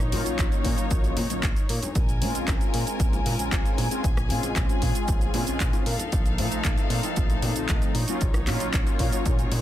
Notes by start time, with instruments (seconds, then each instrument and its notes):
Already playing: analog synth bass A#1, string section D#4 C#5
0.00 cabasa
0.12 analog synth bass A#2, analog polysynth F#3 A#3 C#4 F4, open hi-hat, high conga, low conga
0.26 analog synth bass A#1, closed hi-hat, cabasa
0.39 analog synth bass A#1, kick, clap, closed hi-hat, high bongo, cabasa
0.52 closed hi-hat, cabasa
0.64 analog synth bass A#2, kick, open hi-hat, high bongo
0.78 closed hi-hat, cabasa
0.91 analog synth bass A#1, kick, closed hi-hat, cabasa
1.04 closed hi-hat, high bongo, cabasa
1.17 analog synth bass A#2, open hi-hat, high conga, low conga
1.30 analog synth bass A#1, analog polysynth F#3 A#3 C#4 F4, closed hi-hat, high bongo, cabasa
1.43 analog synth bass A#1, kick, clap, closed hi-hat, cabasa
1.56 closed hi-hat, cabasa
1.69 analog synth bass A#2, open hi-hat, high bongo
1.83 closed hi-hat, low conga, cabasa
1.95 analog synth bass A#1, string section A#4 G#5, kick, closed hi-hat, cabasa
2.09 closed hi-hat, cabasa
2.20 analog synth bass A#2, analog polysynth G#3 C4 C#4 F4, open hi-hat, high bongo, high conga
2.35 analog synth bass A#1, closed hi-hat, cabasa
2.48 analog synth bass A#1, kick, clap, closed hi-hat, high bongo, cabasa
2.61 closed hi-hat, cabasa
2.74 analog synth bass A#2, open hi-hat
2.87 closed hi-hat, high bongo, cabasa
3.00 analog synth bass A#1, kick, closed hi-hat, cabasa
3.13 closed hi-hat, high bongo, cabasa
3.26 analog synth bass A#2, open hi-hat, high conga
3.38 analog synth bass A#1, analog polysynth G#3 C4 C#4 F4, closed hi-hat, cabasa
3.52 analog synth bass A#1, kick, clap, closed hi-hat, high bongo, cabasa
3.65 closed hi-hat, cabasa
3.78 analog synth bass A#2, open hi-hat, high bongo, low conga
3.91 analog polysynth G#3 C4 C#4 F4, closed hi-hat, cabasa
4.03 analog synth bass A#1, string section G#4, kick, closed hi-hat, cabasa
4.17 cross-stick, closed hi-hat, high bongo, cabasa
4.29 analog synth bass A#2, analog polysynth G#3 C4 C#4 F4, open hi-hat, high conga, low conga
4.43 analog synth bass A#1, closed hi-hat, high bongo, cabasa
4.56 analog synth bass A#1, kick, clap, closed hi-hat, cabasa
4.69 closed hi-hat, cabasa
4.82 analog synth bass A#2, kick, open hi-hat, high bongo
4.95 closed hi-hat, cabasa
5.08 analog synth bass A#1, kick, closed hi-hat, high bongo, cabasa
5.21 closed hi-hat, cabasa
5.34 analog synth bass A#2, analog polysynth G#3 C4 C#4 F4, open hi-hat, high conga, low conga
5.47 analog synth bass A#1, analog polysynth G#3 C4 C#4 F4, closed hi-hat, high bongo, cabasa
5.60 analog synth bass A#1, kick, clap, closed hi-hat, cabasa
5.73 closed hi-hat, high bongo, cabasa
5.86 analog synth bass A#2, string section D#4 A4 F5, open hi-hat
5.98 closed hi-hat, low conga, cabasa
6.12 analog synth bass A#1, kick, closed hi-hat, high bongo, cabasa
6.26 closed hi-hat, cabasa
6.38 analog synth bass A#2, analog polysynth F3 A3 C4 D#4, open hi-hat, high bongo, high conga
6.51 analog synth bass A#1, closed hi-hat, cabasa
6.64 analog synth bass A#1, kick, clap, closed hi-hat, cabasa
6.78 closed hi-hat, high bongo, cabasa
6.90 analog synth bass A#2, open hi-hat
7.03 closed hi-hat, high bongo, cabasa
7.16 analog synth bass A#1, kick, closed hi-hat, cabasa
7.30 closed hi-hat, cabasa
7.42 analog synth bass A#2, open hi-hat, high bongo, high conga
7.56 analog synth bass A#1, analog polysynth F3 A3 C4 D#4, closed hi-hat, cabasa
7.68 analog synth bass A#1, kick, clap, closed hi-hat, high bongo, cabasa
7.82 closed hi-hat, cabasa
7.95 analog synth bass A#2, string section C#5, open hi-hat, low conga
8.08 analog polysynth F#3 A#3 C#4 F4, closed hi-hat, high bongo, cabasa
8.21 analog synth bass A#1, kick, closed hi-hat, cabasa
8.34 cross-stick, closed hi-hat, high bongo, cabasa
8.46 analog synth bass A#2, analog polysynth F#3 A#3 C#4 F4, clap, open hi-hat, high conga, low conga
8.60 analog synth bass A#1, closed hi-hat, cabasa
8.73 analog synth bass A#1, kick, clap, closed hi-hat, high bongo, cabasa
8.87 closed hi-hat, cabasa
8.99 analog synth bass A#2, kick, open hi-hat, high bongo
9.12 closed hi-hat, cabasa
9.26 analog synth bass A#1, kick, closed hi-hat, cabasa
9.39 closed hi-hat, high bongo, cabasa
9.52 analog synth bass A#2, open hi-hat, high conga, low conga